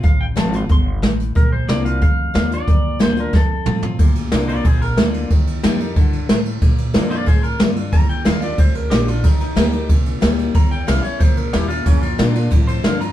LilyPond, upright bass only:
\new Staff \with { instrumentName = "Upright bass" } { \clef bass \time 4/4 \key bes \major \tempo 4 = 183 a,,4 aes,,4 g,,4 a,,4 | bes,,4 c,4 d,4 ees,4 | f,4 d,4 f,8 r8 a,4 | d,4 c,4 bes,,4 d,4 |
ees,4 f,4 g,4 a,4 | bes,4 f,4 a,4 g,4 | f,8 r8 ees,4 d,4 bes,,4 | ees,4 d,4 c,4 d,4 |
e,4 c,8 r8 cis,4 ees,4 | f,4 bes,4 a,4 g,4 | }